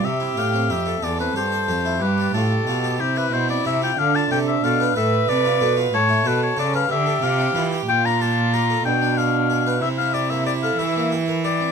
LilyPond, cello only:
\new Staff \with { instrumentName = "Cello" } { \clef bass \time 6/8 \key c \major \tempo 4. = 61 c8 a,8 f,8 e,8 g,8 f,8 | g,8 a,8 b,8 c8 b,8 c8 | d8 c8 b,8 a,8 c8 b,8 | a,8 b,8 cis8 d8 c8 e8 |
\key c \mixolydian bes,4. b,4. | c4. e4. | }